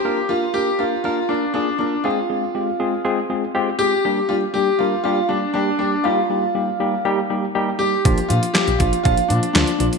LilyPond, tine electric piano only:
\new Staff \with { instrumentName = "Tine electric piano" } { \time 4/4 \key bes \mixolydian \tempo 4 = 120 <bes d' f' bes'>8 <bes d' f' bes'>8 <bes d' f' bes'>8 <bes d' f' bes'>8 <bes d' f' bes'>8 <bes d' f' bes'>8 <bes d' f' aes'>8 <bes d' f' bes'>8 | <aes c' f' aes'>8 <aes c' f' aes'>8 <aes c' f' g'>8 <aes c' f' aes'>8 <aes c' f' aes'>8 <aes c' f' aes'>8 <aes c' f' g'>8 <aes c' f' aes'>8 | <g bes d' g'>8 <g bes d' g'>8 <g bes d' g'>8 <g bes d' bes'>8 <g bes d' g'>8 <g bes d' g'>8 <g bes d' g'>8 <g bes d' g'>8 | <g bes ees' g'>8 <g bes ees' g'>8 <g bes ees' g'>8 <g bes ees' g'>8 <g bes ees' g'>8 <g bes ees' g'>8 <g bes ees' g'>8 <g bes ees' g'>8 |
<f bes d' f'>8 <f bes d' f'>8 <f bes d' f'>8 <f bes d' f'>8 <f bes d' f'>8 <f bes d' f'>8 <f bes d' f'>8 <f bes d' f'>8 | }